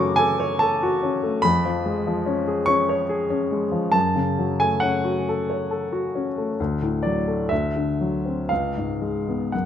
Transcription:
0.00 1.41 F#2 medium
0.00 1.46 C#3 soft
0.00 1.47 F#3 medium
0.00 1.23 A3 medium
0.00 0.10 C#4 medium
0.00 0.30 F#4 soft
0.00 1.47 C#6 loud
0.00 1.47 D6 loud
0.16 0.53 A4 medium
0.16 0.60 G#5 loud
0.40 0.74 C#5 medium
0.59 0.95 A4 medium
0.59 1.44 A5 medium
0.83 1.16 F#4 medium
1.03 1.36 C#4 soft
1.23 1.44 A3 soft
1.42 3.91 F2 medium
1.42 2.68 B5 loud
1.65 1.99 F3 soft
1.86 2.19 G#3 soft
2.07 2.40 F3 medium
2.26 2.60 C#4 soft
2.47 2.81 G#4 soft
2.66 3.02 C#4 medium
2.66 3.93 C#6 loud
2.89 3.23 C#5 soft
3.09 3.43 G#4 medium
3.30 3.64 C#4 soft
3.52 3.86 G#3 soft
3.72 3.94 F3 soft
3.92 6.54 F#2 medium
3.92 4.60 A5 medium
4.16 4.52 C#3 soft
4.38 4.74 F#3 soft
4.60 4.96 A3 soft
4.60 4.83 G#5 medium
4.80 5.18 C#4 soft
4.80 5.26 F#5 medium
5.05 5.40 F#4 soft
5.29 5.63 A4 soft
5.50 5.84 C#5 soft
5.71 6.06 A4 soft
5.93 6.28 F#4 soft
6.15 6.50 C#4 soft
6.38 6.59 A3 soft
6.60 7.49 D2 medium
6.82 7.18 A2 soft
7.03 7.42 F#3 soft
7.03 7.50 D5 medium
7.27 7.51 A3 soft
7.49 8.47 D2 soft
7.49 8.49 E5 medium
7.76 8.15 D3 soft
8.01 8.40 F#3 soft
8.25 8.50 C4 soft
8.49 9.50 C#2 soft
8.49 9.52 F5 medium
8.77 9.17 G#2 soft
9.02 9.42 G#3 soft
9.28 9.53 B3 soft
9.52 9.65 F#2 soft
9.52 9.65 F#5 soft

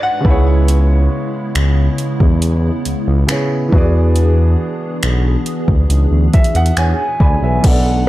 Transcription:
0.00 0.19 G#2 medium
0.00 0.20 G#3 medium
0.00 3.69 G#3 medium
0.00 0.21 D4 medium
0.00 0.22 D4 medium
0.00 0.22 F#4 medium
0.00 0.22 B4 medium
0.00 0.23 B4 medium
0.00 0.27 D5 medium
0.00 0.44 F#5 medium
0.00 0.65 F#5 medium
0.21 3.23 C#3 medium
0.21 3.24 B3 medium
0.25 1.08 C#2 loud
0.25 3.70 C#3 medium
0.25 7.60 B3 medium
0.25 3.69 E4 medium
0.25 3.26 E4 medium
0.25 3.27 G#4 medium
0.25 kick loud
0.30 3.28 C#5 medium
0.68 closed hi-hat medium
1.55 1.89 C#2 loud
1.55 finger snap loud
1.55 closed hi-hat medium
1.98 closed hi-hat medium
2.20 2.70 E2 medium
2.20 kick medium
2.42 closed hi-hat medium
2.85 2.95 C#2 soft
2.85 closed hi-hat medium
3.08 3.24 C#2 medium
3.27 3.72 C#3 medium
3.27 3.69 B3 medium
3.27 3.73 E4 medium
3.27 3.73 G#4 medium
3.27 finger snap loud
3.27 closed hi-hat medium
3.32 3.74 C#5 medium
3.68 7.14 E3 medium
3.68 7.16 B3 medium
3.73 4.56 E2 medium
3.73 7.60 E3 medium
3.73 7.60 D4 medium
3.73 7.17 F#4 medium
3.73 7.60 G#4 medium
3.73 7.18 G#4 medium
3.73 kick loud
3.78 6.76 D5 medium
4.16 closed hi-hat medium
5.03 5.36 B1 loud
5.03 finger snap loud
5.03 closed hi-hat medium
5.46 closed hi-hat medium
5.68 5.85 D2 medium
5.68 kick medium
5.90 6.06 C#2 medium
5.90 closed hi-hat medium
6.11 6.28 D2 medium
6.33 6.54 E5 medium
6.33 kick medium
6.33 closed hi-hat medium
6.44 closed hi-hat medium
6.55 6.72 E2 medium
6.55 6.76 F#5 medium
6.55 closed hi-hat medium
6.66 closed hi-hat medium
6.77 6.94 E2 medium
6.77 7.19 C#5 medium
6.77 7.19 F#5 medium
6.77 7.18 G#5 medium
6.77 7.68 G#5 loud
6.77 finger snap loud
6.77 closed hi-hat medium
7.20 7.37 D2 medium
7.20 7.42 D5 medium
7.20 7.42 G#5 medium
7.20 7.61 B5 medium
7.20 kick medium
7.42 7.59 B1 medium
7.42 7.85 B4 medium
7.42 7.84 E5 medium
7.61 8.09 B1 loud
7.61 8.09 B2 medium
7.61 8.09 A3 medium
7.61 8.09 B3 medium
7.61 8.09 D4 medium
7.61 kick loud
7.61 closed hi-hat medium
7.61 crash medium
7.65 8.09 D4 medium
7.65 8.09 A4 medium
7.65 8.09 F#5 loud
7.70 8.09 D5 medium

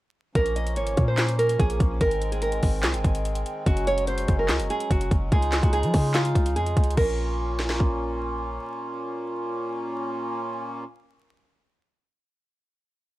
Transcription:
0.35 0.78 A#1 loud
0.35 1.99 F3 medium
0.35 1.99 A#3 medium
0.35 1.99 C#4 medium
0.35 0.55 A#4 loud
0.35 kick loud
0.35 closed hi-hat medium
0.46 closed hi-hat soft
0.56 0.75 D#5 medium
0.56 closed hi-hat medium
0.67 closed hi-hat medium
0.76 0.96 G#1 loud
0.76 1.06 C#5 medium
0.76 closed hi-hat medium
0.87 closed hi-hat medium
0.97 1.57 A#2 loud
0.97 kick medium
0.97 closed hi-hat medium
1.08 1.37 C5 medium
1.18 snare loud
1.18 clap loud
1.18 closed hi-hat medium
1.28 closed hi-hat medium
1.39 1.58 A#4 medium
1.39 closed hi-hat medium
1.49 closed hi-hat medium
1.59 1.79 A#1 loud
1.59 1.79 G#4 medium
1.59 kick medium
1.59 closed hi-hat medium
1.70 closed hi-hat medium
1.80 2.00 A#1 loud
1.80 kick loud
1.80 closed hi-hat medium
2.01 2.60 G#1 loud
2.01 3.65 D#3 medium
2.01 6.94 G#3 medium
2.01 3.65 C4 medium
2.01 2.30 A#4 loud
2.01 kick loud
2.01 closed hi-hat medium
2.11 closed hi-hat soft
2.22 closed hi-hat medium
2.32 2.42 G#4 medium
2.32 closed hi-hat medium
2.42 2.81 A#4 medium
2.42 closed hi-hat medium
2.52 closed hi-hat medium
2.63 2.85 G#1 loud
2.63 kick medium
2.63 open hi-hat medium
2.83 2.96 C2 loud
2.83 3.62 G#4 medium
2.83 snare loud
2.83 clap medium
2.83 closed hi-hat medium
2.94 3.04 G#1 loud
2.94 closed hi-hat medium
3.04 3.44 G#1 loud
3.04 kick medium
3.04 closed hi-hat medium
3.15 closed hi-hat medium
3.25 closed hi-hat medium
3.35 closed hi-hat medium
3.46 closed hi-hat medium
3.66 4.26 F#1 loud
3.66 5.30 F#3 medium
3.66 5.30 C#4 medium
3.66 3.86 F#4 loud
3.66 kick loud
3.66 closed hi-hat medium
3.77 closed hi-hat soft
3.87 4.06 C#5 medium
3.87 closed hi-hat medium
3.98 closed hi-hat medium
4.07 4.37 C5 medium
4.07 closed hi-hat medium
4.18 closed hi-hat medium
4.28 4.51 F#1 loud
4.28 kick medium
4.28 closed hi-hat medium
4.39 4.68 A#4 medium
4.49 4.61 C#2 loud
4.49 snare loud
4.49 clap loud
4.49 closed hi-hat medium
4.59 4.69 F#1 loud
4.59 closed hi-hat medium
4.70 4.89 G#4 medium
4.70 closed hi-hat medium
4.80 closed hi-hat medium
4.90 5.10 F#1 loud
4.90 5.10 F#4 medium
4.90 kick medium
4.90 closed hi-hat medium
5.01 closed hi-hat medium
5.11 5.31 F#1 loud
5.11 kick loud
5.11 closed hi-hat medium
5.32 5.62 C#2 loud
5.32 6.96 C#3 medium
5.32 6.96 D#4 medium
5.32 6.96 F4 medium
5.32 5.61 G#4 loud
5.32 kick loud
5.32 closed hi-hat medium
5.42 closed hi-hat soft
5.52 snare medium
5.52 clap medium
5.52 closed hi-hat medium
5.63 5.85 C#2 loud
5.63 5.73 F#4 medium
5.63 kick medium
5.63 closed hi-hat medium
5.73 6.12 G#4 medium
5.73 closed hi-hat medium
5.83 5.93 F3 loud
5.83 closed hi-hat medium
5.94 6.34 C#3 loud
5.94 kick medium
5.94 open hi-hat medium
6.14 6.53 F4 loud
6.14 snare loud
6.14 clap medium
6.14 closed hi-hat medium
6.25 closed hi-hat medium
6.35 6.58 C#2 loud
6.35 kick medium
6.35 closed hi-hat medium
6.46 closed hi-hat medium
6.56 6.76 F2 loud
6.56 6.95 G#4 medium
6.56 closed hi-hat medium
6.66 closed hi-hat medium
6.77 6.97 C#2 loud
6.77 kick loud
6.77 closed hi-hat medium
6.84 closed hi-hat medium
6.90 closed hi-hat soft
6.97 8.59 A#1 loud
6.97 10.84 A#2 medium
6.97 10.84 A#3 medium
6.97 10.84 C#4 medium
6.97 10.84 F4 medium
6.97 8.18 A#4 medium
6.97 kick loud
6.97 crash medium
7.59 snare medium
7.70 snare medium
7.80 kick medium

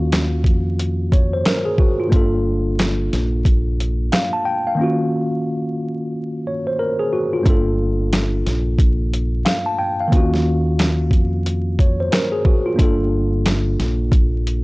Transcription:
0.00 0.44 D#2 medium
0.00 1.39 D#3 medium
0.00 1.40 A#3 medium
0.00 1.41 C#4 medium
0.00 1.10 F4 medium
0.00 1.11 F#4 medium
0.12 snare loud
0.12 clap medium
0.12 closed hi-hat medium
0.44 1.41 F2 medium
0.44 kick medium
0.44 closed hi-hat soft
0.79 closed hi-hat medium
1.12 1.32 C#5 medium
1.12 kick medium
1.12 closed hi-hat medium
1.33 1.45 C5 medium
1.45 1.65 A#4 medium
1.45 snare loud
1.45 clap medium
1.45 closed hi-hat medium
1.65 1.78 G#4 medium
1.78 1.99 F#4 medium
1.78 kick loud
2.00 2.13 F4 medium
2.07 4.06 G2 medium
2.07 4.07 A#3 medium
2.12 3.08 G1 loud
2.12 4.08 D4 medium
2.12 4.09 F4 medium
2.12 kick loud
2.12 closed hi-hat medium
2.16 4.10 A4 medium
2.79 snare loud
2.79 clap medium
2.79 closed hi-hat medium
3.13 4.09 A#1 medium
3.13 snare soft
3.13 closed hi-hat soft
3.45 kick medium
3.45 closed hi-hat medium
3.80 closed hi-hat soft
4.12 4.32 F5 medium
4.12 snare loud
4.12 clap medium
4.12 closed hi-hat medium
4.33 4.45 A5 medium
4.45 4.65 G5 medium
4.67 4.98 F5 medium
4.75 6.73 D#3 medium
4.75 6.74 A#3 medium
4.79 6.75 C#4 medium
4.79 6.43 F4 medium
4.83 6.45 F#4 medium
6.47 6.66 C#5 medium
6.67 6.79 C5 medium
6.79 6.99 A#4 medium
6.99 7.12 G#4 medium
7.13 7.32 F#4 medium
7.33 7.46 F4 medium
7.41 9.39 G2 medium
7.41 9.40 A#3 medium
7.45 8.42 G1 loud
7.45 9.42 D4 medium
7.45 9.43 F4 medium
7.45 kick loud
7.45 closed hi-hat medium
7.50 9.44 A4 medium
8.13 snare loud
8.13 clap medium
8.13 closed hi-hat medium
8.46 9.42 A#1 medium
8.46 snare soft
8.46 closed hi-hat soft
8.79 kick medium
8.79 closed hi-hat medium
9.14 closed hi-hat medium
9.45 9.65 F5 medium
9.45 snare loud
9.45 clap medium
9.45 closed hi-hat medium
9.66 9.78 A5 medium
9.79 9.98 G5 medium
10.00 10.32 F5 medium
10.08 12.06 D#3 medium
10.08 12.07 A#3 medium
10.12 11.11 D#2 loud
10.12 12.08 C#4 medium
10.12 11.76 F4 medium
10.12 kick loud
10.12 closed hi-hat medium
10.16 11.78 F#4 medium
10.34 snare soft
10.79 snare loud
10.79 clap medium
10.79 closed hi-hat medium
11.11 12.08 F2 medium
11.11 kick loud
11.11 closed hi-hat soft
11.46 closed hi-hat medium
11.79 11.99 C#5 medium
11.79 kick medium
11.79 closed hi-hat soft
12.00 12.12 C5 medium
12.12 12.32 A#4 medium
12.12 snare loud
12.12 clap medium
12.12 closed hi-hat medium
12.32 12.44 G#4 medium
12.45 12.65 F#4 medium
12.45 kick loud
12.66 12.79 F4 medium
12.74 14.64 G2 medium
12.74 14.64 A#3 medium
12.78 13.75 G1 loud
12.78 14.64 D4 medium
12.78 14.64 F4 medium
12.78 kick loud
12.78 closed hi-hat medium
12.82 14.64 A4 medium
13.46 snare loud
13.46 clap medium
13.46 closed hi-hat medium
13.80 14.64 A#1 medium
13.80 snare soft
13.80 closed hi-hat soft
14.12 kick medium
14.12 closed hi-hat medium
14.47 closed hi-hat soft

